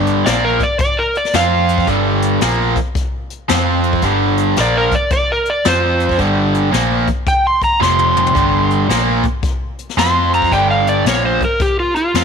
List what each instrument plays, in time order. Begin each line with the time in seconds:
Already playing: fingered electric bass G1, overdriven electric guitar G2 D3 G3
0.07 closed hi-hat
0.26 fingered electric bass A#1, overdriven electric guitar A#2 F3 A#3, electric slide guitar D5, snare, closed hi-hat
0.45 electric slide guitar A#4
0.60 electric slide guitar D5, kick, closed hi-hat
0.79 electric slide guitar D5, kick, closed hi-hat
0.99 electric slide guitar A#4
1.15 electric slide guitar D5, closed hi-hat
1.25 snare
1.33 fingered electric bass F2, overdriven electric guitar F3 C4 F4, electric slide guitar F5, snare, closed hi-hat
1.69 closed hi-hat
1.78 kick
1.87 fingered electric bass G1, overdriven electric guitar G2 D3 G3, kick, closed hi-hat
2.22 closed hi-hat
2.41 fingered electric bass A#1, overdriven electric guitar A#2 F3 A#3, snare, closed hi-hat
2.76 kick, closed hi-hat
2.95 kick, closed hi-hat
3.30 closed hi-hat
3.48 fingered electric bass F2, overdriven electric guitar F3 C4 F4, snare, closed hi-hat
3.83 closed hi-hat
3.93 kick
4.02 fingered electric bass G1, overdriven electric guitar G2 D3 G3, kick, closed hi-hat
4.37 closed hi-hat
4.56 fingered electric bass A#1, overdriven electric guitar A#2 F3 A#3, snare, closed hi-hat
4.61 electric slide guitar D5
4.77 electric slide guitar A#4
4.92 electric slide guitar D5, kick, closed hi-hat
5.10 electric slide guitar D5, kick, closed hi-hat
5.32 electric slide guitar A#4
5.45 closed hi-hat
5.50 electric slide guitar D5
5.65 fingered electric bass F2, overdriven electric guitar F3 C4 F4, electric slide guitar C5, snare, closed hi-hat
6.00 closed hi-hat
6.09 kick
6.18 fingered electric bass G1, overdriven electric guitar G2 D3 G3, kick, closed hi-hat
6.54 closed hi-hat
6.72 fingered electric bass A#1, overdriven electric guitar A#2 F3 A#3, snare, closed hi-hat
7.08 kick, closed hi-hat
7.27 electric slide guitar G5, kick, closed hi-hat
7.47 electric slide guitar C6
7.62 electric slide guitar A#5, kick, closed hi-hat
7.80 fingered electric bass F1, overdriven electric guitar F2 C3 F3, electric slide guitar C6, snare
7.99 high tom
8.17 mid tom
8.26 floor tom
8.35 fingered electric bass G1, overdriven electric guitar G2 D3 G3, kick, closed hi-hat
8.70 closed hi-hat
8.89 fingered electric bass A#1, overdriven electric guitar A#2 F3 A#3, snare, closed hi-hat
9.24 kick, closed hi-hat
9.43 kick, closed hi-hat
9.78 closed hi-hat
9.89 snare
9.97 fingered electric bass F2, overdriven electric guitar F3 C4 F4, electric slide guitar C6, snare, closed hi-hat
10.33 electric slide guitar A#5, closed hi-hat
10.42 kick
10.52 fingered electric bass G1, overdriven electric guitar G2 D3 G3, electric slide guitar G5, kick, closed hi-hat
10.71 electric slide guitar F5
10.87 electric slide guitar D5, closed hi-hat
11.05 fingered electric bass A#1, overdriven electric guitar A#2 F3 A#3, electric slide guitar C#5, snare, closed hi-hat
11.26 electric slide guitar C5
11.41 electric slide guitar A#4, kick, closed hi-hat
11.60 electric slide guitar G4, kick, closed hi-hat
11.80 electric slide guitar F4
11.95 electric slide guitar F4, closed hi-hat
12.14 fingered electric bass F2, overdriven electric guitar F3 C4 F4, snare, closed hi-hat